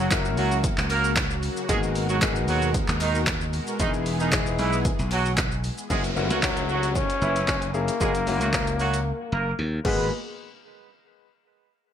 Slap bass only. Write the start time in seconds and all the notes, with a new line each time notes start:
Already playing: F#1
0.37 C#2
0.78 C#2
1.69 G#1
2.48 D#2
2.88 D#2
3.80 E1
4.59 B1
4.99 B1
5.90 F#1
6.16 F#1
6.30 C#2
7.22 F#1
7.48 F#1
8.01 F#1
8.27 F#1
8.41 C#2
9.32 F#1
9.59 D#2
9.85 G#1